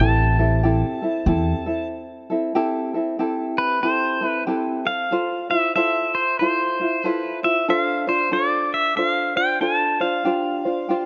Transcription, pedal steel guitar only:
0.00 1.87 A5 loud
3.58 3.84 B4 medium
3.83 4.26 C5 medium
4.26 4.43 B4 medium
4.87 5.50 F5 medium
5.51 5.74 E5 medium
5.76 6.16 E5 medium
6.15 6.38 C5 medium
6.39 7.06 C5 medium
7.06 7.39 B4 medium
7.44 7.69 E5 medium
7.70 8.10 F5 medium
8.09 8.34 C5 medium
8.33 8.73 D5 medium
8.74 8.96 E5 medium
8.97 9.08 E5 medium
9.08 9.37 F5 medium
9.37 9.61 G5 loud
9.61 10.02 A5 medium
10.01 11.06 F5 medium

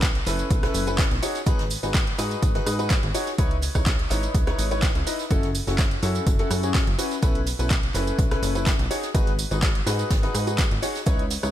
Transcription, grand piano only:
0.26 0.60 C#4 medium
0.26 0.60 E4 medium
0.26 0.60 A4 medium
0.26 0.60 B4 loud
0.63 0.85 C#4 medium
0.63 0.85 E4 medium
0.63 0.85 A4 medium
0.63 0.85 B4 loud
0.87 1.02 C#4 medium
0.87 1.02 E4 medium
0.87 1.02 A4 medium
0.87 1.02 B4 loud
1.23 1.39 D#4 medium
1.23 1.39 F#4 medium
1.23 1.39 G#4 medium
1.23 1.39 C#5 loud
1.46 1.63 D#4 loud
1.46 1.63 F#4 medium
1.46 1.63 G#4 medium
1.46 1.63 B4 loud
1.83 1.98 D#4 medium
1.83 1.98 F#4 medium
1.83 1.98 G#4 medium
1.83 1.98 B4 medium
2.18 2.52 D#4 medium
2.18 2.52 F#4 medium
2.18 2.52 G#4 medium
2.18 2.52 B4 loud
2.55 2.77 D#4 medium
2.55 2.77 F#4 medium
2.55 2.77 G#4 medium
2.55 2.77 B4 loud
2.79 2.94 D#4 medium
2.79 2.94 F#4 medium
2.79 2.94 G#4 medium
2.79 2.94 B4 loud
3.14 3.31 D#4 medium
3.14 3.31 F#4 medium
3.14 3.31 G#4 medium
3.14 3.31 C#5 loud
3.38 3.55 D#4 loud
3.38 3.55 E4 medium
3.38 3.55 B4 medium
3.38 3.55 C#5 loud
3.75 3.90 D#4 medium
3.75 3.90 E4 medium
3.75 3.90 B4 medium
3.75 3.90 C#5 medium
4.10 4.44 D#4 medium
4.10 4.44 E4 medium
4.10 4.44 B4 medium
4.10 4.44 C#5 loud
4.47 4.69 D#4 medium
4.47 4.69 E4 medium
4.47 4.69 B4 medium
4.47 4.69 C#5 loud
4.71 4.86 D#4 medium
4.71 4.86 E4 medium
4.71 4.86 B4 medium
4.71 4.87 C#5 loud
5.07 5.23 D#4 medium
5.07 5.23 E4 medium
5.07 5.23 B4 medium
5.07 5.23 D#5 loud
5.31 5.47 C#4 loud
5.31 5.47 E4 medium
5.31 5.47 F#4 medium
5.31 5.47 A4 loud
5.67 5.83 C#4 medium
5.67 5.83 E4 medium
5.67 5.83 F#4 medium
5.67 5.83 A4 medium
6.03 6.36 C#4 medium
6.03 6.36 E4 medium
6.03 6.36 F#4 medium
6.03 6.36 A4 loud
6.39 6.61 C#4 medium
6.39 6.61 E4 medium
6.39 6.61 F#4 medium
6.39 6.61 A4 loud
6.63 6.79 C#4 medium
6.63 6.78 E4 medium
6.63 6.78 F#4 medium
6.63 6.79 G#4 loud
6.98 7.15 C#4 medium
6.98 7.15 E4 medium
6.98 7.15 F#4 medium
6.98 7.15 B4 loud
7.22 7.39 C#4 loud
7.22 7.39 E4 medium
7.22 7.39 A4 medium
7.22 7.39 B4 loud
7.59 7.74 C#4 medium
7.59 7.74 E4 medium
7.59 7.74 A4 medium
7.59 7.74 B4 medium
7.95 8.28 C#4 medium
7.95 8.28 E4 medium
7.95 8.28 A4 medium
7.95 8.28 B4 loud
8.31 8.53 C#4 medium
8.31 8.53 E4 medium
8.31 8.53 A4 medium
8.31 8.53 B4 loud
8.55 8.70 C#4 medium
8.55 8.71 E4 medium
8.55 8.70 A4 medium
8.55 8.70 B4 loud
8.91 9.07 D#4 medium
8.91 9.07 F#4 medium
8.91 9.07 G#4 medium
8.91 9.07 C#5 loud
9.14 9.31 D#4 loud
9.14 9.31 F#4 medium
9.14 9.31 G#4 medium
9.14 9.31 B4 loud
9.51 9.66 D#4 medium
9.51 9.66 F#4 medium
9.51 9.66 G#4 medium
9.51 9.66 B4 medium
9.86 10.20 D#4 medium
9.86 10.20 F#4 medium
9.86 10.20 G#4 medium
9.86 10.20 B4 loud
10.23 10.45 D#4 medium
10.23 10.45 F#4 medium
10.23 10.45 G#4 medium
10.23 10.45 B4 loud
10.47 10.62 D#4 medium
10.47 10.62 F#4 medium
10.47 10.62 G#4 medium
10.47 10.62 B4 loud
10.82 10.99 D#4 medium
10.82 10.99 F#4 medium
10.82 10.99 G#4 medium
10.82 10.99 C#5 loud
11.06 11.23 D#4 loud
11.06 11.23 E4 medium
11.06 11.23 B4 medium
11.06 11.23 C#5 loud
11.43 11.51 D#4 medium
11.43 11.51 E4 medium
11.43 11.51 B4 medium
11.43 11.51 C#5 medium

